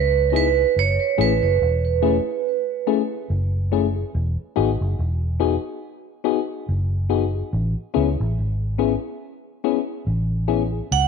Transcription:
Already playing: fingered electric bass C#2, vibraphone B4
0.32 fm electric piano B3 D#4 E4 G#4
0.36 vibraphone B4
0.58 fm electric piano E4 G#4
0.76 fingered electric bass F#1, vibraphone C#5
1.18 fingered electric bass A1, fm electric piano A3 C#4 E4 G#4, vibraphone B4
1.43 fingered electric bass F#1
1.62 fingered electric bass E1
2.02 fm electric piano A3 C#4 E4 G#4
2.87 fm electric piano A3 C#4 E4 G#4
3.30 fingered electric bass F#1
3.72 fm electric piano A3 C#4 E4 G#4
3.96 fm electric piano E4 G#4
4.15 fingered electric bass E1
4.56 fingered electric bass G#1, fm electric piano B3 D#4 F#4 G#4
4.81 fingered electric bass F#1
4.99 fingered electric bass E1
5.40 fm electric piano B3 D#4 F#4 G#4
6.24 fm electric piano B3 D#4 F#4 G#4
6.69 fingered electric bass F#1
7.09 fm electric piano B3 D#4 F#4 G#4
7.35 fm electric piano F#4 G#4
7.53 fingered electric bass A1
7.94 fingered electric bass C#2, fm electric piano B3 C#4 E4 G#4
8.20 fingered electric bass A1
8.38 fingered electric bass G#1
8.78 fm electric piano B3 C#4 E4 G#4
9.64 fm electric piano B3 C#4 E4 G#4
10.07 fingered electric bass A1
10.48 fm electric piano B3 C#4 E4 G#4
10.72 fm electric piano E4 G#4
10.91 fingered electric bass C#2, vibraphone F#5

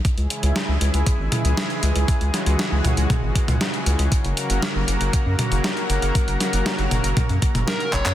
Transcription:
0.05 analog synth pad C#3 E3 G#3 E4 G#4, kick, closed hi-hat
0.18 analog synth bass C#2, closed hi-hat
0.30 closed hi-hat
0.43 analog synth bass C#2, closed hi-hat
0.56 snare, closed hi-hat
0.69 analog synth bass C#2
0.81 analog synth bass C#2, closed hi-hat
0.94 analog synth bass C#2, closed hi-hat
1.06 kick, closed hi-hat
1.19 analog synth bass G#1
1.32 closed hi-hat, mid tom
1.45 analog synth bass C#2, closed hi-hat
1.57 snare, closed hi-hat
1.70 closed hi-hat
1.83 analog synth bass C#2, closed hi-hat
1.96 analog synth bass C#2, closed hi-hat
2.08 analog synth pad F#4, kick, closed hi-hat
2.21 analog synth bass C#2, closed hi-hat
2.34 snare, closed hi-hat
2.46 analog synth bass C#2, closed hi-hat
2.59 snare, closed hi-hat
2.72 analog synth bass C#2
2.85 analog synth bass C#2, closed hi-hat, mid tom
2.97 analog synth bass C#2, closed hi-hat
3.10 kick, closed hi-hat, mid tom
3.23 analog synth bass G#1
3.35 kick, closed hi-hat
3.48 analog synth bass C#2, closed hi-hat, mid tom
3.61 snare, closed hi-hat
3.74 closed hi-hat
3.86 analog synth bass C#2, closed hi-hat
3.99 analog synth bass C#2, closed hi-hat
4.12 analog synth pad F#3 A#3 F#4 A#4, kick, closed hi-hat
4.25 analog synth bass F#1, closed hi-hat
4.37 closed hi-hat
4.50 analog synth bass F#1, closed hi-hat
4.62 snare, closed hi-hat
4.75 analog synth bass F#1
4.88 analog synth bass F#1, closed hi-hat
5.01 analog synth bass F#1, closed hi-hat
5.13 kick, closed hi-hat
5.26 analog synth bass F#2
5.39 closed hi-hat, mid tom
5.51 analog synth bass F#1, closed hi-hat
5.64 snare, closed hi-hat
5.77 closed hi-hat
5.90 analog synth bass F#1, closed hi-hat
6.02 analog synth bass F#1, closed hi-hat
6.15 kick, closed hi-hat
6.28 analog synth bass F#1, closed hi-hat
6.40 snare, closed hi-hat
6.53 analog synth bass F#1, closed hi-hat
6.66 snare, closed hi-hat
6.79 analog synth bass F#1, closed hi-hat
6.91 analog synth bass F#1, closed hi-hat, mid tom
7.04 analog synth bass F#1, closed hi-hat
7.17 kick, closed hi-hat, mid tom
7.29 analog synth bass F#2, closed hi-hat
7.42 kick, closed hi-hat
7.55 analog synth bass F#1, closed hi-hat, mid tom
7.68 lead electric guitar A#4, snare, closed hi-hat
7.80 closed hi-hat
7.93 analog synth bass F#1, lead electric guitar C#5, kick, clap, closed hi-hat
8.06 analog synth bass F#2, clap, closed hi-hat

